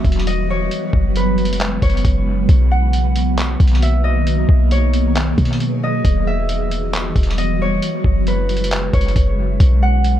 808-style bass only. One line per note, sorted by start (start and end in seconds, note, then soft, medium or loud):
0.05 0.69 E1 loud
0.93 1.79 F#1 loud
1.82 2.04 F#1 loud
2.05 2.47 F#1 loud
2.49 3.56 B1 loud
3.60 4.45 B1 loud
4.49 5.34 B1 loud
5.38 6.02 B2 loud
6.05 7.12 E1 loud
7.16 7.80 E1 loud
8.04 8.90 F#1 loud
8.93 9.15 F#1 loud
9.16 9.58 F#1 loud
9.60 10.20 B1 loud